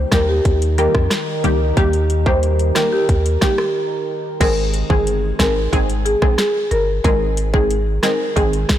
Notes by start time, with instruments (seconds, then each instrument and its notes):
Already playing: ambient pad D#3 D#4 G4 A#4
0.12 sub bass D#2, synth stab D#3 G3 A#3 G4, marimba A#4, kick, cross-stick, snare, closed hi-hat
0.29 marimba G4
0.45 sub bass D#2, kick, closed hi-hat
0.62 closed hi-hat
0.78 synth stab D#3 G3 A#3 G4, marimba A#4, closed hi-hat
0.94 sub bass F2, kick, cross-stick
1.10 cross-stick, snare, closed hi-hat
1.44 sub bass C#2, synth stab D#3 G3 A#3 G4, closed hi-hat
1.77 sub bass D#2, synth stab D#3 G3 A#3 G4, marimba G4, kick, closed hi-hat
1.93 closed hi-hat
2.10 closed hi-hat
2.26 synth stab D#3 G3 A#3 G4, marimba C5, kick
2.43 closed hi-hat
2.59 closed hi-hat
2.75 synth stab D#3 G3 A#3 G4, marimba A#4, cross-stick, snare, closed hi-hat
2.92 marimba G4
3.09 sub bass D#2, kick, closed hi-hat
3.26 closed hi-hat
3.41 synth stab D#3 G3 A#3 G4, marimba G4, kick, cross-stick, snare, closed hi-hat
3.58 cross-stick
4.40 sub bass G#1, synth stab D#3 G#3 C4 G#4, marimba A#4, kick, closed hi-hat, crash
4.74 closed hi-hat
4.90 sub bass G1, synth stab D#3 G#3 C4 G#4, marimba G#4, kick
5.07 closed hi-hat
5.39 sub bass G#1, synth stab D#3 G#3 C4 G#4, marimba A#4, kick, cross-stick, snare, closed hi-hat
5.72 sub bass G#1, synth stab D#3 G#3 C4 G#4, kick, closed hi-hat
5.90 closed hi-hat
6.05 marimba G#4, closed hi-hat
6.22 sub bass A#1, synth stab D#3 G#3 C4 G#4, kick, cross-stick
6.38 marimba G#4, cross-stick, snare, closed hi-hat
6.71 sub bass G1, marimba A#4, closed hi-hat
7.04 sub bass G#1, synth stab D#3 G#3 C4 G#4, marimba A#4, kick, closed hi-hat
7.37 closed hi-hat
7.54 synth stab D#3 G#3 C4 G#4, marimba G#4, kick
7.71 closed hi-hat
8.03 synth stab D#3 G#3 C4 G#4, marimba A#4, cross-stick, snare, closed hi-hat
8.36 sub bass G#1, synth stab D#3 G#3 C4 G#4, marimba G#4, kick, closed hi-hat
8.53 closed hi-hat
8.69 kick, cross-stick, snare, closed hi-hat